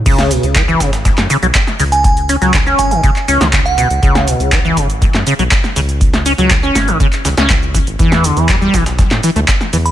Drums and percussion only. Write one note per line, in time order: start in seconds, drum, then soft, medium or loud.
0.06 kick loud
0.06 closed hi-hat medium
0.06 crash loud
0.06 shaker soft
0.18 snare soft
0.18 snare medium
0.18 closed hi-hat soft
0.18 shaker soft
0.31 closed hi-hat medium
0.31 open hi-hat loud
0.31 shaker medium
0.43 closed hi-hat medium
0.43 shaker soft
0.55 kick loud
0.55 snare loud
0.55 clap loud
0.55 closed hi-hat medium
0.55 shaker soft
0.68 shaker soft
0.80 kick medium
0.80 snare loud
0.80 closed hi-hat medium
0.80 open hi-hat medium
0.80 shaker medium
0.93 snare loud
0.93 closed hi-hat medium
0.93 shaker soft
1.05 kick loud
1.05 snare loud
1.05 closed hi-hat medium
1.05 shaker soft
1.18 snare loud
1.18 snare medium
1.18 clap soft
1.18 closed hi-hat medium
1.18 shaker soft
1.30 closed hi-hat medium
1.30 open hi-hat loud
1.30 shaker medium
1.43 closed hi-hat medium
1.43 shaker soft
1.55 kick loud
1.55 snare loud
1.55 clap loud
1.55 closed hi-hat medium
1.55 shaker soft
1.67 snare soft
1.67 shaker soft
1.80 open hi-hat medium
1.80 shaker medium
1.92 closed hi-hat medium
1.92 shaker soft
2.04 kick loud
2.04 closed hi-hat medium
2.04 shaker soft
2.17 closed hi-hat soft
2.17 shaker soft
2.29 closed hi-hat medium
2.29 open hi-hat loud
2.29 shaker medium
2.42 snare soft
2.42 closed hi-hat medium
2.42 shaker soft
2.54 kick loud
2.54 snare loud
2.54 clap loud
2.54 closed hi-hat medium
2.54 shaker soft
2.66 snare soft
2.66 shaker soft
2.79 kick medium
2.79 closed hi-hat medium
2.79 open hi-hat loud
2.79 shaker medium
2.91 closed hi-hat medium
2.91 shaker soft
3.03 kick loud
3.03 closed hi-hat medium
3.03 shaker soft
3.16 clap soft
3.16 closed hi-hat soft
3.16 shaker soft
3.28 closed hi-hat medium
3.28 open hi-hat loud
3.28 shaker medium
3.41 snare medium
3.41 closed hi-hat medium
3.41 shaker soft
3.53 kick loud
3.53 snare loud
3.53 clap loud
3.53 closed hi-hat medium
3.53 shaker soft
3.66 shaker soft
3.78 closed hi-hat medium
3.78 open hi-hat loud
3.78 shaker medium
3.90 closed hi-hat medium
3.90 shaker soft
4.03 kick loud
4.03 closed hi-hat medium
4.03 shaker soft
4.15 snare medium
4.15 closed hi-hat soft
4.15 shaker soft
4.27 closed hi-hat medium
4.27 open hi-hat loud
4.27 shaker medium
4.40 closed hi-hat medium
4.40 shaker soft
4.52 kick loud
4.52 snare loud
4.52 clap loud
4.52 closed hi-hat medium
4.52 shaker soft
4.65 shaker soft
4.77 kick medium
4.77 closed hi-hat medium
4.77 open hi-hat loud
4.77 shaker medium
4.90 closed hi-hat soft
4.90 shaker soft
5.02 kick loud
5.02 closed hi-hat medium
5.02 shaker soft
5.14 snare soft
5.14 snare medium
5.14 clap soft
5.14 shaker soft
5.27 closed hi-hat medium
5.27 open hi-hat loud
5.27 shaker medium
5.39 closed hi-hat medium
5.39 shaker soft
5.51 kick loud
5.51 snare loud
5.51 clap loud
5.51 closed hi-hat medium
5.51 shaker soft
5.64 snare soft
5.64 shaker soft
5.76 open hi-hat medium
5.76 open hi-hat loud
5.76 shaker medium
5.89 closed hi-hat medium
5.89 shaker soft
6.01 kick loud
6.01 closed hi-hat medium
6.01 shaker soft
6.14 snare medium
6.14 closed hi-hat soft
6.14 shaker soft
6.26 closed hi-hat medium
6.26 open hi-hat loud
6.26 shaker medium
6.38 snare soft
6.38 closed hi-hat soft
6.38 shaker soft
6.50 kick loud
6.50 snare loud
6.50 clap loud
6.50 closed hi-hat medium
6.50 shaker soft
6.63 snare soft
6.63 shaker soft
6.75 kick medium
6.75 snare medium
6.75 closed hi-hat medium
6.75 open hi-hat loud
6.75 shaker medium
6.88 closed hi-hat soft
6.88 shaker soft
7.00 kick loud
7.00 closed hi-hat medium
7.00 shaker soft
7.13 clap soft
7.13 closed hi-hat soft
7.13 shaker soft
7.25 snare loud
7.25 closed hi-hat medium
7.25 open hi-hat loud
7.25 shaker medium
7.37 snare loud
7.37 snare medium
7.37 closed hi-hat medium
7.37 shaker soft
7.50 kick loud
7.50 snare loud
7.50 clap loud
7.50 closed hi-hat medium
7.50 shaker soft
7.63 shaker soft
7.75 kick medium
7.75 closed hi-hat medium
7.75 open hi-hat medium
7.75 shaker medium
7.87 closed hi-hat soft
7.87 shaker soft
7.99 kick loud
7.99 closed hi-hat medium
7.99 shaker soft
8.12 snare soft
8.12 snare medium
8.12 closed hi-hat soft
8.12 shaker soft
8.24 closed hi-hat medium
8.24 open hi-hat loud
8.24 shaker medium
8.37 closed hi-hat medium
8.37 shaker soft
8.49 kick loud
8.49 snare loud
8.49 clap loud
8.49 closed hi-hat medium
8.49 shaker soft
8.62 shaker soft
8.74 kick medium
8.74 snare loud
8.74 closed hi-hat medium
8.74 open hi-hat medium
8.74 shaker medium
8.86 snare loud
8.86 closed hi-hat medium
8.86 closed hi-hat soft
8.86 shaker soft
8.99 kick loud
8.99 snare loud
8.99 closed hi-hat medium
8.99 shaker soft
9.11 snare loud
9.11 snare medium
9.11 clap soft
9.11 closed hi-hat medium
9.11 shaker soft
9.23 closed hi-hat medium
9.23 open hi-hat loud
9.23 shaker medium
9.36 closed hi-hat soft
9.36 shaker soft
9.48 kick loud
9.48 snare loud
9.48 clap loud
9.48 closed hi-hat medium
9.48 shaker soft
9.61 snare soft
9.61 shaker soft
9.73 open hi-hat medium
9.73 shaker medium
9.86 closed hi-hat medium
9.86 shaker soft